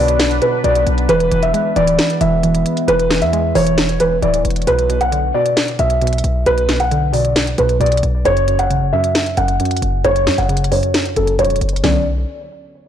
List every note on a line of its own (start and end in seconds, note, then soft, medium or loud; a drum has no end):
0.00 0.40 B1 loud
0.00 0.41 B2 medium
0.00 0.87 D3 medium
0.00 1.05 F#3 medium
0.00 1.05 B3 medium
0.00 1.05 D4 medium
0.00 2.84 B4 medium
0.00 0.39 D5 medium
0.08 closed hi-hat medium
0.20 snare loud
0.20 closed hi-hat medium
0.31 closed hi-hat medium
0.42 0.63 B2 medium
0.42 0.59 B4 medium
0.42 closed hi-hat medium
0.64 0.86 B1 loud
0.64 1.09 B2 medium
0.64 0.81 D5 medium
0.64 closed hi-hat medium
0.75 closed hi-hat medium
0.87 1.08 B1 loud
0.87 closed hi-hat medium
0.98 closed hi-hat soft
1.09 1.31 E1 loud
1.09 1.30 E3 medium
1.09 4.64 G#3 medium
1.09 4.64 B3 medium
1.09 4.64 E4 medium
1.09 1.41 B4 loud
1.09 closed hi-hat medium
1.20 closed hi-hat medium
1.31 1.53 E1 loud
1.31 1.75 E3 medium
1.31 closed hi-hat medium
1.43 1.74 E5 medium
1.43 closed hi-hat medium
1.54 2.66 G#3 medium
1.54 closed hi-hat medium
1.76 1.98 D1 loud
1.76 2.20 E3 loud
1.76 2.18 D5 medium
1.76 closed hi-hat medium
1.87 closed hi-hat medium
1.99 snare loud
1.99 closed hi-hat medium
2.10 closed hi-hat medium
2.21 2.64 E1 loud
2.21 2.42 E3 medium
2.21 2.84 E5 medium
2.21 closed hi-hat medium
2.43 2.87 E3 medium
2.43 closed hi-hat medium
2.55 closed hi-hat medium
2.66 closed hi-hat medium
2.77 closed hi-hat soft
2.88 3.23 E1 loud
2.88 3.09 E3 medium
2.88 3.20 B4 loud
2.88 4.66 C#5 medium
2.88 closed hi-hat medium
2.99 closed hi-hat medium
3.10 3.54 E3 medium
3.10 snare medium
3.10 closed hi-hat medium
3.22 3.54 E2 loud
3.22 3.53 E5 medium
3.22 closed hi-hat medium
3.33 4.45 G#3 medium
3.33 closed hi-hat medium
3.55 4.20 E1 loud
3.55 4.00 E3 medium
3.55 3.97 C#5 medium
3.55 open hi-hat loud
3.67 closed hi-hat medium
3.78 snare loud
3.78 closed hi-hat medium
3.89 closed hi-hat medium
4.00 4.21 E3 medium
4.00 4.17 B4 medium
4.00 closed hi-hat medium
4.22 4.44 D1 loud
4.22 4.67 E3 loud
4.22 4.40 D5 medium
4.22 closed hi-hat soft
4.34 closed hi-hat medium
4.45 4.66 E1 loud
4.45 closed hi-hat medium
4.50 closed hi-hat medium
4.56 closed hi-hat medium
4.62 closed hi-hat soft
4.67 5.32 B1 loud
4.67 4.88 B2 medium
4.67 4.99 B4 loud
4.67 closed hi-hat medium
4.79 closed hi-hat medium
4.90 5.33 B2 medium
4.90 closed hi-hat medium
5.01 5.32 F#5 medium
5.01 closed hi-hat medium
5.12 6.24 D3 medium
5.12 closed hi-hat medium
5.34 5.79 B2 medium
5.34 5.77 D5 medium
5.46 closed hi-hat medium
5.57 snare loud
5.57 closed hi-hat medium
5.68 closed hi-hat medium
5.79 6.22 B1 loud
5.79 6.01 B2 medium
5.79 6.42 E5 medium
5.79 closed hi-hat medium
5.90 closed hi-hat medium
6.02 6.45 B2 medium
6.02 closed hi-hat medium
6.07 closed hi-hat medium
6.13 closed hi-hat medium
6.18 closed hi-hat medium
6.24 6.45 B1 loud
6.24 closed hi-hat medium
6.46 7.54 B1 loud
6.46 6.68 B2 medium
6.46 6.78 B4 loud
6.46 closed hi-hat medium
6.58 closed hi-hat medium
6.69 7.12 B2 medium
6.69 snare medium
6.69 closed hi-hat medium
6.80 7.12 F#5 medium
6.80 closed hi-hat medium
6.91 8.03 D3 medium
6.91 closed hi-hat medium
7.13 7.58 B2 medium
7.13 7.56 D5 medium
7.13 open hi-hat medium
7.25 closed hi-hat medium
7.36 snare loud
7.36 closed hi-hat medium
7.47 closed hi-hat medium
7.58 7.80 B1 loud
7.58 7.79 B2 medium
7.58 7.75 B4 medium
7.58 closed hi-hat medium
7.69 closed hi-hat medium
7.80 8.02 B1 loud
7.80 8.25 B2 medium
7.80 7.98 D5 medium
7.80 closed hi-hat medium
7.86 closed hi-hat medium
7.92 closed hi-hat medium
7.97 closed hi-hat medium
8.03 8.25 B1 loud
8.03 closed hi-hat medium
8.25 8.72 F#1 loud
8.25 8.46 F#2 medium
8.25 8.57 C#5 loud
8.25 closed hi-hat medium
8.37 closed hi-hat medium
8.48 8.92 F#2 medium
8.48 closed hi-hat medium
8.59 8.91 F#5 medium
8.59 closed hi-hat medium
8.70 8.83 A1 loud
8.70 9.82 C#3 medium
8.70 closed hi-hat medium
8.81 8.92 F#1 loud
8.93 9.36 F#2 loud
8.93 9.35 E5 medium
9.04 closed hi-hat medium
9.15 snare loud
9.15 closed hi-hat medium
9.26 closed hi-hat medium
9.37 9.59 F#1 loud
9.37 9.59 F#2 medium
9.37 10.01 F#5 medium
9.37 closed hi-hat medium
9.48 closed hi-hat medium
9.60 10.04 F#2 medium
9.60 closed hi-hat medium
9.65 closed hi-hat medium
9.71 closed hi-hat medium
9.77 closed hi-hat medium
9.82 10.04 F#1 loud
9.82 closed hi-hat medium
10.05 10.28 F#1 loud
10.05 10.26 F#2 medium
10.05 10.36 C#5 loud
10.05 closed hi-hat medium
10.16 closed hi-hat medium
10.27 10.38 F#2 loud
10.27 10.70 F#2 medium
10.27 snare medium
10.27 closed hi-hat medium
10.38 10.81 F#1 loud
10.38 10.70 F#5 medium
10.38 closed hi-hat medium
10.49 11.61 C#3 medium
10.49 closed hi-hat medium
10.57 closed hi-hat medium
10.64 closed hi-hat medium
10.71 11.15 F#2 medium
10.71 11.14 C#5 medium
10.71 open hi-hat medium
10.83 closed hi-hat medium
10.94 snare loud
10.94 closed hi-hat medium
11.06 closed hi-hat medium
11.16 11.38 F#1 loud
11.16 11.38 F#2 medium
11.16 11.34 A4 medium
11.16 closed hi-hat medium
11.27 closed hi-hat medium
11.39 11.60 E1 loud
11.39 11.84 F#2 medium
11.39 11.56 C#5 medium
11.39 closed hi-hat medium
11.45 closed hi-hat medium
11.50 closed hi-hat medium
11.56 closed hi-hat soft
11.61 11.83 F#1 loud
11.61 closed hi-hat medium
11.69 closed hi-hat medium
11.76 closed hi-hat medium
11.84 12.25 B1 loud
11.84 12.05 D3 medium
11.84 12.05 F#3 medium
11.84 12.05 B3 medium
11.84 12.05 C#4 loud
11.84 12.04 D5 medium
11.84 snare loud
11.84 floor tom loud